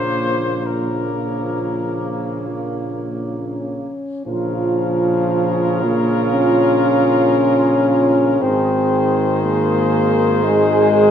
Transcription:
0.00 3.91 A#1 soft
0.00 0.66 C#3 soft
0.00 0.64 F3 soft
0.00 0.64 A#3 medium
0.00 0.68 C5 medium
0.65 3.88 C#3 soft
0.65 2.49 F3 medium
0.65 3.87 A#3 soft
0.65 3.09 A#4 medium
2.48 2.92 A#3 soft
3.09 4.24 C#4 medium
4.25 8.37 A#1 medium
4.25 8.43 C#3 medium
4.25 5.85 F3 loud
4.25 8.36 F4 medium
4.25 8.44 A#4 medium
5.83 6.34 A#3 loud
6.33 8.42 C#4 medium
8.41 11.11 G#1 medium
8.41 11.11 D#3 medium
8.41 9.42 C4 loud
8.41 11.11 G#4 medium
8.41 11.11 C5 medium
9.43 10.45 A#3 loud
10.44 11.11 G#3 loud

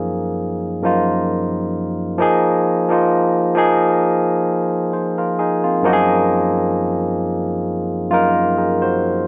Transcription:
0.00 0.14 F#2 loud
0.00 0.15 F3 loud
0.00 0.15 A#3 loud
0.00 0.16 D#4 medium
0.00 0.16 G#4 loud
0.00 2.21 A#4 medium
0.00 2.21 D#5 medium
0.82 2.02 F#2 medium
0.82 2.02 F3 medium
0.82 2.03 A#3 medium
0.82 2.03 D#4 medium
0.82 2.04 F4 medium
2.18 2.79 F3 loud
2.18 2.79 A#3 medium
2.18 2.80 D#4 medium
2.22 2.81 G#4 loud
2.89 3.47 F3 medium
2.89 3.47 A#3 medium
2.89 3.48 D#4 medium
2.89 3.49 F4 medium
3.55 4.35 F3 loud
3.55 4.35 A#3 medium
3.55 4.36 D#4 medium
3.55 4.37 G#4 loud
4.93 5.16 F4 medium
4.93 5.16 C5 medium
5.18 5.37 F4 medium
5.18 5.37 A#4 medium
5.39 5.62 D#4 medium
5.39 5.62 G#4 medium
5.64 6.07 C4 medium
5.64 6.06 F4 medium
5.83 7.42 F#2 loud
5.83 7.42 F3 loud
5.83 7.43 A#3 loud
5.83 7.43 D#4 medium
5.83 5.92 F#4 loud
5.93 7.47 G#4 loud
8.10 9.27 F#2 medium
8.10 9.27 A#3 medium
8.10 8.57 D#4 medium
8.10 9.27 F4 medium
8.14 8.57 A#4 loud
8.57 8.80 D#4 medium
8.57 8.80 G#4 medium
8.82 9.25 F#4 medium
8.82 9.24 C5 medium

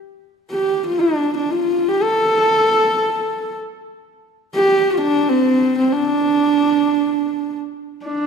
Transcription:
0.51 0.86 G4 medium
0.87 1.02 F4 medium
1.00 1.36 D4 medium
1.37 1.52 D4 medium
1.51 1.91 F4 medium
1.89 2.04 G4 medium
2.03 3.53 A4 medium
4.56 4.92 G4 loud
4.91 5.01 F4 medium
5.02 5.31 D4 medium
5.29 5.78 C4 medium
5.78 5.93 C4 medium
5.92 7.55 D4 medium
8.06 8.27 D4 medium

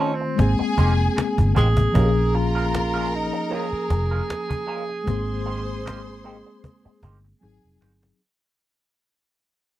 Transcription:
0.00 0.33 D#3 medium
0.00 0.34 A3 medium
0.00 0.11 C4 medium
0.00 0.35 C4 medium
0.00 0.16 C#4 medium
0.00 0.11 D#4 medium
0.00 0.40 F4 medium
0.00 0.11 A4 medium
0.00 0.11 C5 medium
0.00 cajon slap soft
0.14 0.53 C4 medium
0.21 muted clean electric guitar stroke soft
0.21 cajon slap soft
0.36 0.55 G#1 loud
0.36 1.90 G#3 medium
0.36 1.91 A#3 medium
0.36 1.92 C4 medium
0.36 1.53 G#4 loud
0.36 1.53 G#5 loud
0.36 muted clean electric guitar stroke soft
0.36 cajon bass medium
0.36 cajon slap medium
0.42 1.93 G#4 medium
0.59 muted clean electric guitar stroke soft
0.59 muted fingered electric bass stroke soft
0.78 1.07 F1 medium
0.78 0.92 A#3 medium
0.78 0.92 D#4 medium
0.78 0.92 G4 medium
0.78 0.92 C5 medium
0.78 cajon bass medium
0.98 muted clean electric guitar stroke soft
1.16 muted clean electric guitar stroke soft
1.16 cajon slap loud
1.38 1.52 G1 medium
1.38 cajon bass medium
1.38 cajon slap soft
1.55 1.86 A1 medium
1.55 1.66 A#3 medium
1.55 1.67 D#4 medium
1.55 1.67 G4 medium
1.55 2.37 G#4 loud
1.55 1.67 C5 medium
1.55 cajon bass medium
1.77 muted clean electric guitar stroke soft
1.77 cajon bass loud
1.92 3.29 A#1 loud
1.92 5.02 F3 medium
1.92 2.09 G#3 medium
1.92 5.03 A#3 medium
1.92 2.09 C#4 medium
1.92 5.04 C#4 medium
1.92 2.09 F4 medium
1.92 4.64 A#4 medium
1.92 2.09 A#4 medium
1.92 4.64 A#5 loud
1.92 cajon bass loud
1.98 2.04 G4 medium
2.05 5.08 G#4 medium
2.34 3.17 F4 medium
2.34 muted clean electric guitar stroke soft
2.34 cajon slap soft
2.55 2.65 G#3 soft
2.55 2.65 C#4 medium
2.55 2.65 F4 medium
2.55 2.64 A#4 medium
2.73 muted clean electric guitar stroke soft
2.73 cajon slap loud
2.94 3.07 G#3 medium
2.94 3.06 C#4 medium
2.94 3.06 F4 medium
2.94 3.06 A#4 medium
2.94 cajon slap soft
3.12 3.56 D#4 medium
3.12 muted clean electric guitar stroke soft
3.12 cajon slap soft
3.33 muted clean electric guitar stroke soft
3.33 cajon slap soft
3.50 3.65 G#3 medium
3.50 3.65 C#4 medium
3.50 3.65 F4 medium
3.50 7.43 G#4 loud
3.50 3.65 A#4 medium
3.50 cajon slap soft
3.73 muted fingered electric bass stroke soft
3.73 cajon slap soft
3.90 4.20 F1 medium
3.90 muted clean electric guitar stroke soft
3.90 cajon bass medium
4.11 4.21 G#3 soft
4.11 4.21 C#4 medium
4.11 4.21 F4 medium
4.11 4.20 A#4 medium
4.11 cajon slap soft
4.30 cajon slap loud
4.50 muted clean electric guitar stroke soft
4.50 cajon bass medium
4.67 4.82 G#3 medium
4.67 4.82 C#4 medium
4.67 4.82 F4 medium
4.67 4.82 A#4 medium
4.67 cajon slap soft
4.89 muted clean electric guitar stroke soft
4.89 cajon slap soft
5.04 6.41 G#1 loud
5.04 7.36 G#3 medium
5.04 7.37 A#3 medium
5.04 6.98 C5 medium
5.04 6.98 C6 loud
5.04 cajon bass loud
5.08 7.38 C4 medium
5.08 7.39 G#4 medium
5.46 5.60 A#3 medium
5.46 5.60 D#4 medium
5.46 5.60 G4 medium
5.46 5.61 C5 medium
5.86 5.99 A#3 medium
5.86 5.99 D#4 medium
5.86 6.00 G4 medium
5.86 6.00 C5 medium
5.86 cajon slap loud
6.07 muted clean electric guitar stroke soft
6.07 cajon slap soft
6.24 6.35 A#3 medium
6.24 6.35 D#4 medium
6.24 6.36 G4 medium
6.24 6.36 C5 medium
6.24 cajon slap soft
6.46 muted clean electric guitar stroke soft
6.46 cajon slap soft
6.63 muted clean electric guitar stroke soft
6.63 cajon bass medium
6.63 cajon slap soft
6.85 muted clean electric guitar stroke soft
6.85 muted fingered electric bass stroke soft
7.03 7.32 G1 medium
7.03 7.17 A#3 medium
7.03 7.17 D#4 medium
7.03 7.17 G4 medium
7.03 7.17 C5 medium
7.03 cajon bass medium
7.24 muted clean electric guitar stroke soft
7.41 7.58 G#1 loud
7.41 8.19 F#3 medium
7.41 8.20 C4 medium
7.41 8.20 D#4 medium
7.41 7.79 G#4 medium
7.41 8.20 G#4 medium
7.41 7.79 G#5 medium
7.41 muted clean electric guitar stroke soft
7.64 7.77 F1 medium
7.81 8.10 G1 medium
7.81 7.92 G#3 medium
7.81 7.92 D#4 medium
7.81 7.92 F#4 medium
7.81 7.92 C5 soft
7.81 cajon slap medium
8.02 muted clean electric guitar stroke soft
8.02 cajon slap medium

